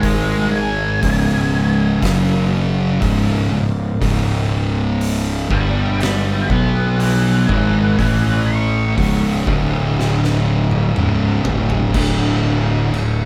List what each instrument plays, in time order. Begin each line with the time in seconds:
Already playing: fingered electric bass G#1, distorted electric guitar G#2 D#3 G#3
0.03 lead electric guitar D#5 G#5, kick, open hi-hat
0.55 lead electric guitar G#5
1.03 fingered electric bass C#1, distorted electric guitar C#2 G#2 C#3, kick, open hi-hat
2.02 fingered electric bass F#1, distorted electric guitar F#2 C#3 F#3, kick, snare, open hi-hat
3.02 fingered electric bass C#1, distorted electric guitar C#2 G#2 C#3, kick, open hi-hat
3.51 fingered electric bass C#1, distorted electric guitar C#2 G#2
4.01 fingered electric bass C#1, distorted electric guitar C#2 G#2 C#3, kick, open hi-hat
5.01 open hi-hat
5.49 fingered electric bass G1, distorted electric guitar G2 D3 G3, lead electric guitar G5, kick
5.53 lead electric guitar B5
6.00 lead electric guitar G5 B5, snare, open hi-hat
6.49 fingered electric bass B1, distorted electric guitar B2 F#3 B3, lead electric guitar F#5 B5, kick
6.99 lead electric guitar E5 G#5, open hi-hat
7.48 fingered electric bass G#1, distorted electric guitar G#2 D#3 G#3, lead electric guitar E5 G#5, kick
7.97 fingered electric bass A1, distorted electric guitar A2 E3 A3, lead electric guitar E5 G#5, kick, open hi-hat
8.47 lead electric guitar C#6
8.97 fingered electric bass C#1, distorted electric guitar C#2 G#2 C#3, kick, open hi-hat
9.46 fingered electric bass D1, distorted electric guitar D2 A2 D3, kick
10.00 snare
10.24 snare
10.71 high tom
10.95 fingered electric bass C#1, distorted electric guitar C#2 G#2 C#3, mid tom
11.45 fingered electric bass D1, distorted electric guitar D2 A2 D3, floor tom
11.70 floor tom
11.94 fingered electric bass D1, distorted electric guitar D2 A2 D3, kick, crash
12.93 fingered electric bass D1, distorted electric guitar D2 A2, crash